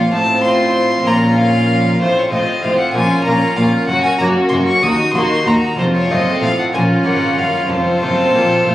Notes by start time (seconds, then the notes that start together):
Already playing: F4 C#5 F5
0.10 A1 A2 C4 C5 A5
0.44 C4 F4 C6
1.04 A#1 A#2 C#4 F4 A#4 A#5
1.37 C#4 F4 F5
1.99 A1 A2 C4 F4 C5
2.18 C#5
2.31 A1 A2 C4 F4 C5 D#5
2.62 A1 A2 C4 F4 C5 F5
2.79 F#5
2.93 A#1 A#2 C#4 F4 A#4 G#5
3.24 A#1 A#2 A#3 C#4 F4 A#4 A#5
3.56 A#1 A#2 C#4 F4 A#4 F5
3.87 F#1 F#2 C#4 F#4 A#4 F#5
4.04 G#5
4.18 F#1 F#2 A#3 C#4 F#4 A#4 A#5
4.49 F#1 F#2 C#4 F#4 A#4 C6
4.53 F#2
4.67 C#6
4.82 D#2 D#4 F#4 A#4 D#6
5.14 D#2 A#3 D#4 F#4 A#4 C6
5.45 D#2 D#4 F#4 A#4 A#5
5.77 F1 F2 C4 F4 A4 C5
5.96 C#5
6.09 F#1 F#2 A3 C4 F4 D#5
6.41 A1 A2 F5
6.59 F#5
6.73 A#1 A#2 C#4 F4 A#4 G#5
7.04 G#1 G#2 A#3 C#4 F4 F#5
7.37 F#1 F#2 F5
7.69 F1 F2 C4 F4 A4 C5
8.02 F#1 F#2 C4 F4
8.34 A#1 A#2
8.67 A1 A2